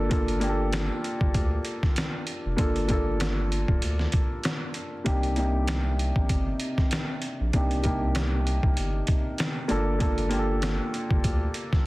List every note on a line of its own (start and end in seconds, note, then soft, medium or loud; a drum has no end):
0.00 0.90 G1 loud
0.00 0.09 A#3 medium
0.00 0.10 D4 medium
0.00 0.11 F4 medium
0.00 0.12 A4 medium
0.09 0.38 A#3 medium
0.09 0.39 D4 medium
0.09 0.39 F4 medium
0.09 0.40 A4 medium
0.09 kick loud
0.09 closed hi-hat medium
0.28 closed hi-hat medium
0.40 1.53 A#3 medium
0.40 1.53 D4 medium
0.40 1.54 F4 medium
0.40 0.50 G4 medium
0.40 closed hi-hat medium
0.49 1.57 A4 medium
0.73 snare loud
0.73 closed hi-hat medium
1.04 closed hi-hat medium
1.21 1.32 G1 medium
1.21 kick medium
1.34 1.59 D2 loud
1.34 kick loud
1.34 closed hi-hat medium
1.65 closed hi-hat medium
1.83 kick medium
1.83 snare soft
1.96 snare loud
1.96 closed hi-hat medium
2.27 closed hi-hat medium
2.46 2.56 F1 medium
2.57 3.65 G1 loud
2.57 2.86 A#3 medium
2.57 2.86 D4 medium
2.57 2.87 F4 medium
2.57 2.87 A4 medium
2.57 kick loud
2.57 closed hi-hat medium
2.76 closed hi-hat soft
2.88 4.00 A#3 medium
2.88 4.01 D4 medium
2.88 4.01 F4 medium
2.88 4.02 A4 loud
2.88 kick medium
2.88 closed hi-hat medium
3.20 snare loud
3.20 closed hi-hat medium
3.52 closed hi-hat medium
3.68 3.80 D1 medium
3.68 kick medium
3.82 4.07 D2 medium
3.82 closed hi-hat medium
3.99 snare soft
4.12 kick loud
4.12 closed hi-hat medium
4.44 snare loud
4.44 closed hi-hat medium
4.74 closed hi-hat medium
5.04 6.12 C2 loud
5.04 5.33 C3 medium
5.04 5.33 A#3 medium
5.04 5.34 D4 medium
5.04 5.34 D#4 medium
5.04 5.34 G4 medium
5.04 kick loud
5.04 closed hi-hat medium
5.23 closed hi-hat soft
5.36 6.48 C3 medium
5.36 6.48 A#3 medium
5.36 6.49 D4 medium
5.36 6.49 D#4 medium
5.36 6.49 G4 medium
5.36 closed hi-hat medium
5.67 snare loud
5.67 closed hi-hat medium
5.99 closed hi-hat medium
6.16 6.27 A#1 medium
6.16 kick medium
6.29 6.54 G1 loud
6.29 kick loud
6.29 closed hi-hat medium
6.60 closed hi-hat medium
6.78 kick medium
6.78 snare soft
6.91 snare loud
6.91 closed hi-hat medium
7.22 closed hi-hat medium
7.41 7.51 A#1 medium
7.53 8.60 C2 loud
7.53 7.81 C3 medium
7.53 7.82 A#3 medium
7.53 7.82 D4 medium
7.53 7.82 D#4 medium
7.53 7.83 G4 medium
7.53 kick loud
7.53 closed hi-hat medium
7.71 closed hi-hat soft
7.83 8.95 C3 medium
7.83 8.95 A#3 medium
7.83 8.96 D4 medium
7.83 8.96 D#4 medium
7.83 8.97 G4 medium
7.83 kick medium
7.83 closed hi-hat medium
8.15 snare loud
8.15 closed hi-hat medium
8.47 closed hi-hat medium
8.63 8.74 C2 medium
8.63 kick medium
8.77 9.02 G1 loud
8.77 closed hi-hat medium
9.07 kick loud
9.07 closed hi-hat medium
9.38 snare loud
9.38 closed hi-hat medium
9.68 10.80 G1 loud
9.68 9.97 A#3 medium
9.68 9.97 D4 medium
9.68 9.98 F4 medium
9.68 9.98 A4 loud
9.68 closed hi-hat medium
9.99 10.28 A#3 medium
9.99 10.28 D4 medium
9.99 10.29 F4 medium
9.99 10.29 A4 loud
9.99 kick loud
9.99 closed hi-hat medium
10.18 closed hi-hat soft
10.29 11.42 A#3 medium
10.29 11.43 D4 medium
10.29 11.43 F4 medium
10.29 10.39 G4 medium
10.29 closed hi-hat medium
10.39 11.47 A4 loud
10.62 snare loud
10.62 closed hi-hat medium
10.94 closed hi-hat medium
11.10 11.22 G1 medium
11.10 kick medium
11.24 11.49 D2 loud
11.24 kick loud
11.24 closed hi-hat medium
11.54 closed hi-hat medium
11.73 kick medium
11.73 snare soft